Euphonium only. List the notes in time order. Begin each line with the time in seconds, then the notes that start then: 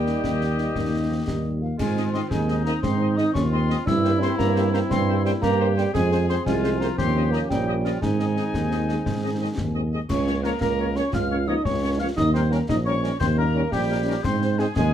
Already playing: G3
1.61 F3
1.78 G#3
2.13 C4
2.31 G#3
2.65 A#3
2.83 C4
3.17 D#4
3.34 C#4
3.52 C4
3.86 E4
4.21 C4
4.38 A#3
4.72 A#3
4.91 C4
5.25 G3
5.42 A#3
5.76 G3
5.94 G#3
6.29 C4
6.46 G#3
6.81 A#3
6.98 C4
7.32 A#3
7.50 G3
8.01 G#3
10.09 C#4
10.44 A#3
10.61 A#3
10.95 C#4
11.12 F4
11.47 D#4
11.64 C#4
11.99 F4
12.16 D#4
12.34 C4
12.51 A#3
12.69 D#4
12.85 C#4
13.20 C4
13.37 A#3
13.72 G3
14.23 C4
14.59 G#3
14.76 G#3